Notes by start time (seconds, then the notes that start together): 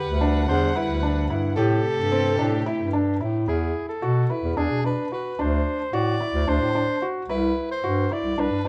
Already playing: D3 G3 B4 F#5
0.08 D2
0.21 D4
0.48 E2 D4 C5
0.76 E4 B4
0.90 D2
1.03 D4
1.30 G2 E4
1.56 A2 C3 A3 G4 A4
1.98 G2
2.12 C4
2.39 A2 D4
2.66 E4
2.80 G2
2.93 D4
3.21 A2 E4
3.48 E2 E4 G#4
3.89 A4
4.02 B2 F#4
4.30 E4 B4
4.43 E2
4.57 E2 D4 G#4
4.71 B2
4.84 D4 B4
5.12 F#4 B4
5.39 D2 D4 C5
5.93 A2 F#4 D5
6.20 E4
6.34 D2
6.48 D2 D4 C5
6.61 A2
6.75 D4
7.02 F#4
7.29 C2 E4 B4
7.71 C5
7.84 G2 F#4
8.11 E4 D5
8.24 C2
8.38 C2 D4 B4
8.51 G2
8.65 D4